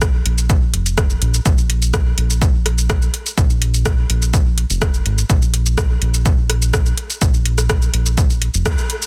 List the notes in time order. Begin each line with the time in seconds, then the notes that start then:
Already playing: A#1
0.02 kick, cross-stick, shaker
0.26 A#1, closed hi-hat
0.38 shaker
0.50 kick, shaker
0.74 F1, closed hi-hat
0.86 closed hi-hat, shaker
0.98 kick, cross-stick, shaker
1.10 shaker
1.22 A#1, closed hi-hat
1.34 shaker
1.46 A#1, kick, shaker
1.58 shaker
1.70 closed hi-hat
1.82 shaker
1.94 kick, cross-stick, shaker
2.18 A#1, closed hi-hat
2.30 shaker
2.42 kick, shaker
2.66 cross-stick, closed hi-hat
2.78 shaker
2.90 kick, cross-stick, shaker
3.02 shaker
3.14 closed hi-hat
3.26 shaker
3.38 A#1, kick, shaker
3.50 shaker
3.62 closed hi-hat
3.74 shaker
3.86 kick, cross-stick, shaker
4.10 A#1, closed hi-hat
4.22 shaker
4.34 kick, shaker
4.58 closed hi-hat
4.70 F1, shaker
4.82 kick, cross-stick, shaker
4.94 shaker
5.06 G#1, closed hi-hat
5.18 shaker
5.30 A#1, kick, shaker
5.42 shaker
5.54 closed hi-hat
5.66 shaker
5.78 kick, cross-stick, shaker
6.02 A#1, closed hi-hat
6.14 shaker
6.26 kick, shaker
6.50 cross-stick, closed hi-hat
6.62 shaker
6.74 kick, cross-stick, shaker
6.86 shaker
6.97 closed hi-hat
7.10 shaker
7.22 A#1, kick, shaker
7.34 shaker
7.46 closed hi-hat
7.58 cross-stick, shaker
7.70 kick, cross-stick, shaker
7.82 shaker
7.94 A#1, closed hi-hat
8.06 shaker
8.18 kick, shaker
8.30 shaker
8.42 closed hi-hat
8.54 F1, shaker
8.66 D#2, kick, cross-stick, shaker
8.78 shaker
8.90 closed hi-hat
9.02 shaker